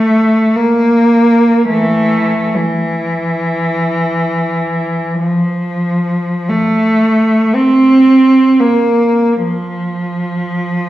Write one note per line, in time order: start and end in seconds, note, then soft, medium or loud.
0.00 0.57 A3 medium
0.56 1.69 A#3 medium
1.68 2.52 E3 soft
1.68 2.55 A3 medium
2.55 5.20 E3 medium
5.20 6.46 F3 medium
6.48 7.53 A3 medium
7.54 8.60 C4 medium
8.59 9.42 A#3 medium
9.42 10.89 F3 medium